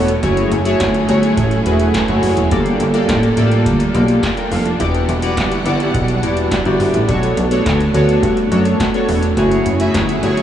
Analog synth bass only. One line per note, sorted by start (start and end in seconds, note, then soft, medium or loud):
0.00 0.18 E1 medium
0.23 0.46 F#1 loud
0.52 0.75 F#1 loud
0.80 1.04 G1 medium
1.09 1.32 G1 loud
1.37 1.61 A1 loud
1.66 1.89 E1 medium
2.09 2.20 F#1 medium
2.23 2.35 F#1 loud
2.37 2.49 E1 medium
2.51 2.75 G1 loud
2.80 3.04 G1 loud
3.09 3.32 A1 medium
3.37 3.67 A1 loud
3.66 3.89 D2 loud
3.95 4.18 B1 medium
4.52 4.75 F1 loud
4.80 5.04 E1 loud
5.08 5.39 E1 loud
5.37 5.61 G1 medium
5.66 5.89 G1 loud
5.94 6.24 B1 loud
6.23 6.46 E1 medium
6.65 6.77 G1 medium
6.80 6.92 G1 medium
6.94 7.06 A1 medium
7.09 7.32 B1 loud
7.37 7.61 B1 loud
7.66 7.89 D2 medium
7.94 8.18 D2 medium
8.23 8.46 G2 loud
8.52 8.75 F#2 medium
9.09 9.32 E1 medium
9.37 9.61 F#1 loud
9.66 9.89 F#1 loud
9.94 10.18 G1 medium
10.23 10.42 G1 medium